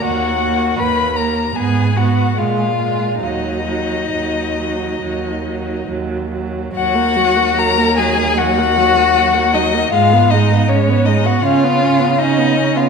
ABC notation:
X:1
M:4/4
L:1/16
Q:1/4=77
K:Ebm
V:1 name="Violin"
g4 c'2 b2 a2 g2 f4 | e12 z4 | g4 b2 a2 g6 e2 | f2 e2 d2 e g f4 e3 f |]
V:2 name="Violin"
G4 c2 B2 A2 G2 F4 | E12 z4 | G4 B2 A2 G6 E2 | F2 E2 D2 E G F4 E3 F |]
V:3 name="Viola"
B,2 B,2 B,2 B,2 C2 C2 A,2 A,2 | G,2 G,2 G,2 G,2 G,2 G,2 G,2 G,2 | G, B, G, B, G, B, G, B, G, B, G, B, G, B, G, B, | A, C A, C A, C A, C D C D C D C D C |]
V:4 name="Cello" clef=bass
E,,4 E,,4 A,,4 B,,4 | E,,4 E,,4 E,,4 E,,4 | E,,16 | A,,8 D,8 |]